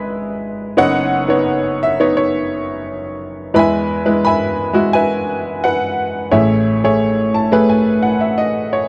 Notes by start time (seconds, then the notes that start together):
Already playing: G#1 G#2 G#3 E4 G#4 B4 D#5 E5
0.77 F#1 F#2 B3 D#4 B4 C#5 D#5 F#5
1.28 B3 D#4 C#5
1.83 E5
2.00 B3 D#4 C#5
2.17 C#5
3.54 E2 E3 G#3 E4 B4 E5 B5
3.59 G#5
4.05 G#3 E4 B4
4.25 E5 G#5 B5
4.73 G#3 E4 F#4
4.93 B4 E5 G#5
5.64 B4 F#5
6.31 A1 A2 A3 G#4 C#5 E5
6.84 A3 G#4 C#5
7.34 A5
7.52 A3 G#4 B4
7.69 G#5
8.03 F#5
8.21 E5
8.38 D#5
8.73 C#5